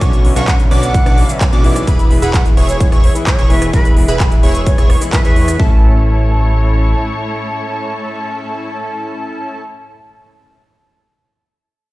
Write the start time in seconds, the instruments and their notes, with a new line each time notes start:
Already playing: grand piano D3 F#3 B3 C#4, string section D3 B3 E4
0.01 analog synth bass B1, supersaw synth B3 C#4 D4 F#4 C#5, digital synth lead C#6, kick, closed hi-hat, shaker
0.13 shaker
0.24 grand piano D3 F#3 B3 C#4, open hi-hat
0.36 analog synth bass B1, supersaw synth B3 C#4 D4 F#4 C#5, flute F#5, digital synth lead C#6, closed hi-hat, shaker
0.48 kick, clap, closed hi-hat, shaker
0.59 grand piano D3 F#3 B3 C#4, closed hi-hat, shaker
0.71 analog synth bass B1, supersaw synth B3 C#4 D4 F#4 D5, digital synth lead D6, open hi-hat
0.83 flute F#5, closed hi-hat, shaker
0.94 grand piano D3 F#3 B3 E4, kick, closed hi-hat, shaker
1.06 analog synth bass B1, supersaw synth B3 C#4 D4 F#4 D5, digital synth lead D6, cross-stick, shaker
1.18 open hi-hat
1.29 grand piano D3 F#3 B3 C#4, closed hi-hat, shaker
1.41 kick, clap, closed hi-hat, shaker
1.53 analog synth bass B1, supersaw synth B3 C#4 D4 F#4 D5, digital synth lead D6, closed hi-hat, shaker
1.64 grand piano E3 G#3 B3 E4, open hi-hat
1.76 cross-stick, closed hi-hat, shaker
1.87 analog synth bass E1, string section E3 E4 G#4 B4, supersaw synth E4 G#4 B4, digital synth lead B5, kick, closed hi-hat, shaker
1.99 shaker
2.10 grand piano E3 G#3 B3 E4, open hi-hat
2.22 analog synth bass E1, supersaw synth E4 G#4 B4, flute F#5, digital synth lead B5, closed hi-hat, shaker
2.34 flute F#5, kick, clap, closed hi-hat, shaker
2.45 grand piano E3 G#3 B3 E4, closed hi-hat, shaker
2.57 analog synth bass E1, supersaw synth E4 G#4 C#5, digital synth lead C#6, open hi-hat
2.69 flute C#5, closed hi-hat, shaker
2.80 grand piano E3 G#3 B3 G#4, flute C#5, kick, closed hi-hat, shaker
2.92 analog synth bass E1, supersaw synth E4 G#4 C#5, digital synth lead C#6, cross-stick, shaker
3.04 flute C#5, open hi-hat
3.15 grand piano E3 G#3 B3 E4, closed hi-hat, shaker
3.27 flute C#5, kick, clap, closed hi-hat, shaker
3.39 analog synth bass E1, supersaw synth E4 G#4 C#5, digital synth lead C#6, closed hi-hat, shaker
3.49 grand piano E3 G#3 B3 E4, flute B4, open hi-hat
3.62 cross-stick, closed hi-hat, shaker
3.73 analog synth bass E1, supersaw synth E4 G#4 B4, flute B4, digital synth lead B5, kick, closed hi-hat, shaker
3.85 closed hi-hat, shaker
3.96 grand piano E3 G#3 B3 E4, open hi-hat
4.08 analog synth bass E1, supersaw synth E4 G#4 B4, digital synth lead B5, closed hi-hat, shaker
4.20 kick, clap, closed hi-hat, shaker
4.31 grand piano E3 G#3 B3 E4, closed hi-hat, shaker
4.43 analog synth bass E1, supersaw synth E4 G#4 C#5, digital synth lead C#6, open hi-hat
4.55 closed hi-hat, shaker
4.66 grand piano E3 G#3 B3 G#4, flute C#5, kick, closed hi-hat, shaker
4.78 analog synth bass E1, supersaw synth E4 G#4 C#5, digital synth lead C#6, cross-stick, closed hi-hat, shaker
4.90 cross-stick, open hi-hat
5.01 grand piano E3 G#3 B3 E4, closed hi-hat, shaker
5.12 grand piano E3 G#3 B3 E4, flute B4, kick, clap, closed hi-hat, shaker
5.25 analog synth bass E2, supersaw synth E4 G#4 C#5, flute B4, digital synth lead C#6, closed hi-hat, shaker
5.36 grand piano A2 E3 G#3 B3 E4, open hi-hat
5.48 cross-stick, closed hi-hat, shaker
5.58 analog synth bass A1, string section A2 A3 E4 C#5, grand piano E3 A3 C#4 E4, supersaw synth C#4 E4 A4, digital synth lead A5, kick